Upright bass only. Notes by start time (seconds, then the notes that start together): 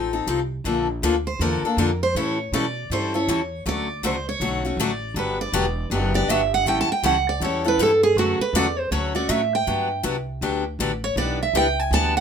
Already playing: A1
0.27 C2
0.64 A#1
1.02 D2
1.39 E2
1.63 muted upright bass stroke
1.77 F2
2.15 A2
2.52 B2
2.90 G2
3.27 E2
3.66 D2
4.03 C#2
4.40 B1
4.77 A1
5.14 G1
5.52 E1
5.90 F#1
6.28 G1
6.65 A1
6.89 muted upright bass stroke
7.03 C#2
7.40 E2
7.78 G2
8.15 F#2
8.39 muted upright bass stroke
8.53 E2
8.91 D2
9.29 A2
9.67 G2
10.03 C2
10.41 D2
10.79 A1
11.16 B1
11.53 C#2
11.91 D2